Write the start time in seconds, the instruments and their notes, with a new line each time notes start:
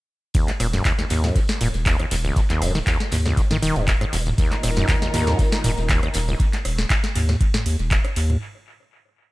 0.34 acid bass D#2, kick, closed hi-hat, ride, tambourine
0.48 acid bass D#1, snare, clap, closed hi-hat
0.60 sub bass D#1, acid bass A#2, cross-stick, open hi-hat, ride, tambourine
0.73 acid bass F#2, snare, closed hi-hat, tambourine
0.85 acid bass D#2, kick, clap, closed hi-hat, ride, tambourine
0.99 acid bass D#2, snare, closed hi-hat
1.10 acid bass D#2, sub bass D#2, mid tom, open hi-hat, ride, tambourine
1.24 acid bass F#2, cross-stick, snare, closed hi-hat, mid tom, tambourine
1.36 acid bass D#2, kick, closed hi-hat, ride, tambourine
1.48 snare, closed hi-hat, tambourine
1.61 sub bass D#1, acid bass A#2, mid tom, open hi-hat, ride, tambourine
1.74 sub bass D#1, closed hi-hat, tambourine
1.86 acid bass D#2, kick, clap, closed hi-hat, ride, tambourine
1.99 acid bass D#2, cross-stick, closed hi-hat
2.11 sub bass D#1, acid bass D#2, open hi-hat, ride, tambourine
2.25 acid bass C#2, closed hi-hat, tambourine
2.36 acid bass D#3, kick, closed hi-hat, ride, tambourine
2.50 acid bass D#2, snare, clap, closed hi-hat
2.62 sub bass D#1, acid bass F#2, cross-stick, open hi-hat, ride, tambourine
2.75 acid bass D#3, snare, closed hi-hat, tambourine
2.87 acid bass D#2, kick, clap, closed hi-hat, ride, tambourine
3.00 snare, closed hi-hat
3.12 sub bass D#2, acid bass D#2, mid tom, open hi-hat, ride, tambourine
3.25 acid bass C#2, cross-stick, snare, closed hi-hat, mid tom, tambourine
3.37 acid bass D#3, kick, closed hi-hat, ride, tambourine
3.50 acid bass D#3, snare, closed hi-hat, mid tom, tambourine
3.63 sub bass D#1, acid bass D#3, open hi-hat, ride, tambourine
3.76 sub bass D#1, acid bass F#2, closed hi-hat, tambourine
3.88 acid bass D#2, kick, clap, closed hi-hat, ride, tambourine
4.01 acid bass G#2, cross-stick, closed hi-hat
4.13 sub bass D#1, acid bass D#2, open hi-hat, ride, tambourine
4.26 acid bass D#2, closed hi-hat, mid tom, tambourine
4.38 acid bass D#2, string section A#2 D#3 D#4 A#4, kick, closed hi-hat, ride, tambourine
4.52 acid bass D#1, snare, clap, closed hi-hat
4.63 sub bass D#1, acid bass A#2, cross-stick, open hi-hat, ride, tambourine
4.76 acid bass F#2, snare, closed hi-hat, tambourine
4.88 acid bass D#2, kick, clap, closed hi-hat, ride, tambourine
5.02 acid bass D#2, snare, closed hi-hat
5.14 acid bass D#2, sub bass D#2, mid tom, open hi-hat, ride, tambourine
5.27 acid bass F#2, cross-stick, snare, closed hi-hat, mid tom, tambourine
5.39 acid bass D#2, kick, closed hi-hat, ride, tambourine
5.52 snare, closed hi-hat, tambourine
5.64 sub bass D#1, acid bass A#2, mid tom, open hi-hat, ride, tambourine
5.77 sub bass D#1, closed hi-hat, tambourine
5.89 acid bass D#2, kick, clap, closed hi-hat, ride, tambourine
6.03 acid bass D#2, cross-stick, closed hi-hat
6.14 sub bass D#1, acid bass D#2, open hi-hat, ride, tambourine
6.28 acid bass C#2, closed hi-hat, tambourine
6.40 kick, closed hi-hat, ride
6.53 snare, clap, closed hi-hat
6.65 sub bass D#1, cross-stick, open hi-hat, ride
6.78 snare, closed hi-hat
6.90 kick, clap, closed hi-hat, ride
7.04 snare, closed hi-hat
7.15 sub bass D#2, mid tom, open hi-hat, ride
7.29 cross-stick, snare, closed hi-hat, mid tom
7.41 kick, closed hi-hat, ride
7.54 snare, closed hi-hat, mid tom
7.66 sub bass D#2, open hi-hat, ride
7.79 sub bass D#1, closed hi-hat
7.91 kick, clap, closed hi-hat, ride
8.05 cross-stick, closed hi-hat
8.16 sub bass D#2, open hi-hat, ride
8.30 closed hi-hat, mid tom